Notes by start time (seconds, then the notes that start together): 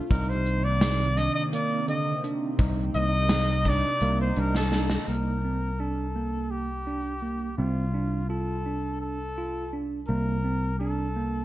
0.10 C2 C3 D#3 A#3 C4 D#4 A#4, kick, closed hi-hat
0.29 C5
0.46 closed hi-hat
0.64 D5
0.81 D#4, snare, closed hi-hat
1.17 D4 D#5, snare, closed hi-hat
1.35 D#5
1.53 A#3 D5, closed hi-hat
1.88 D3 D#5, closed hi-hat
2.24 D4, closed hi-hat
2.59 C2 C3 A#3 C4 D#4, kick, closed hi-hat
2.94 C2 D#5, closed hi-hat
3.29 D#4, snare, closed hi-hat
3.65 D4 D5, kick, closed hi-hat
4.01 C2 A#3, closed hi-hat
4.21 C5
4.36 C2 D4 A#4, closed hi-hat
4.55 A4, snare
4.72 D4, snare
4.90 snare
5.08 C2 A#3 A#4
5.44 C4
5.80 D4 A4
6.16 A#3
6.51 G4
6.87 D4
7.22 A#3
7.58 C2 C4 F4
7.94 D4
8.29 F4 A4
8.66 D4
9.01 A4
9.38 F4
9.73 D4
10.08 C2 A#3 A#4
10.45 C4
10.79 D4 A4
11.16 A#3